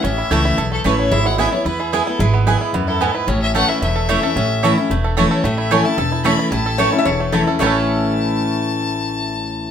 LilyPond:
<<
  \new Staff \with { instrumentName = "Fiddle" } { \time 4/4 \key a \major \tempo 4 = 222 e''2~ e''8 a'8 b'8 cis''8 | e''8 fis''8 e''8 cis''8 b'8 gis'4 a'8 | b'4 r4. a'4 b'8 | cis''8 e''8 fis''8 e''8 e''2~ |
e''2. r8 cis''8 | e''8 e''8 gis''8 a''4. b''4 | a''2. r4 | a''1~ |
a''1 | }
  \new Staff \with { instrumentName = "Resonator guitar played with a steel bar" } { \time 4/4 \key a \major r1 | r1 | r1 | r1 |
r1 | r1 | r4 cis''8. e''16 cis''4 a'4 | cis''1~ |
cis''1 | }
  \new Staff \with { instrumentName = "Mandolin" } { \time 4/4 \key a \major r4 <a e' cis'' a''>8 r4. <a e' cis'' a''>8 r8 | r4 <b e' b' gis''>8 r4. <b e' b' gis''>8 r8 | r4 <b e' b' gis''>8 r4. <b e' b' gis''>8 r8 | r4 <a e' cis'' a''>8 r4. <a e' cis'' a''>8 r8 |
r4 <a e' cis'' a''>8 r4. <a e' cis'' a''>8 r8 | r4 <a e' cis'' a''>8 r4. <a e' cis'' a''>8 r8 | r4 <a e' cis'' a''>8 r4. <a e' cis'' a''>8 r8 | <a e' cis'' a''>1~ |
<a e' cis'' a''>1 | }
  \new Staff \with { instrumentName = "Five-string banjo" } { \time 4/4 \key a \major <e cis' e'>8 e'8 a8 e'8 a'8 a8 e'8 e8 | e'8 e'8 e'8 e'8 e'8 e'8 e'8 e'8 | e'8 b8 e'8 e'8 b8 e'8 b8 e'8 | cis'4 a'8 e'8 a8 a'8 a8 a'8 |
cis'4 a'8 e'8 a8 a'8 a8 a'8 | a8 e'8 a'8 e'8 a'8 e'8 a'8 e'8 | e'8 a'8 a8 e'8 a'8 a8 e'8 a'8 | <a cis' e' a'>1~ |
<a cis' e' a'>1 | }
  \new Staff \with { instrumentName = "Steel-string acoustic guitar" } { \time 4/4 \key a \major << { r4 <e a cis' e'>4 r4 <e a cis' e'>4 | r4 <gis b e'>8 <b e'>8 r4 <gis b e'>8 <b e'>8 | r4 <gis b e'>4 r2 | r4 <e a cis' e'>4 r4 <e a cis' e'>8 <cis' e'>8 |
r4 <e a cis' e'>8 <cis' e'>8 r4 <e a cis' e'>4 | r4 <e a cis' e'>8 <cis' e'>8 r4 <e a cis' e'>4 | r4 <e a cis' e'>8 <cis' e'>8 r4 <e a cis' e'>8 <cis' e'>8 | <a, e a cis' e'>1~ |
<a, e a cis' e'>1 | } \\ { a,2 e,2 | gis2 b2 | gis2 fis,4 gis,4 | a,2 e,2 |
a,2 e,2 | a,2 e,2 | a,2 e,2 | r1 |
r1 | } >> }
  \new Staff \with { instrumentName = "Upright bass" } { \clef bass \time 4/4 \key a \major a,,4 cis,4 b,,4 a,,4 | gis,,2 e,2 | gis,,2 e,2 | a,,2 e,,2 |
a,,2 e,,2 | a,,2 e,,2 | a,,2 e,,2 | a,,1~ |
a,,1 | }
>>